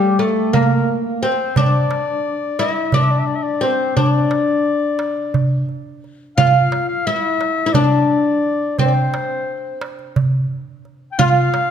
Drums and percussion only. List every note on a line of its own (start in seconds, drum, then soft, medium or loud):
0.19 darbuka tek medium
0.37 darbuka ka soft
0.54 darbuka dum medium
0.88 darbuka ka soft
1.22 darbuka ka soft
1.56 darbuka dum medium
1.91 darbuka tek medium
2.59 darbuka tek medium
2.76 darbuka ka soft
2.92 darbuka dum medium
3.28 darbuka ka soft
3.97 darbuka dum medium
4.31 darbuka tek medium
4.66 darbuka ka soft
4.99 darbuka tek medium
5.17 darbuka ka soft
5.34 darbuka dum medium
5.69 darbuka ka soft
6.04 darbuka ka soft
6.38 darbuka dum medium
6.72 darbuka tek medium
7.41 darbuka tek medium
7.58 darbuka ka soft
7.74 darbuka dum medium
8.44 darbuka ka soft
8.79 darbuka dum medium
9.14 darbuka tek medium
9.81 darbuka tek medium
9.99 darbuka ka soft
10.16 darbuka dum medium
10.85 darbuka ka soft
11.19 darbuka dum loud
11.54 darbuka tek medium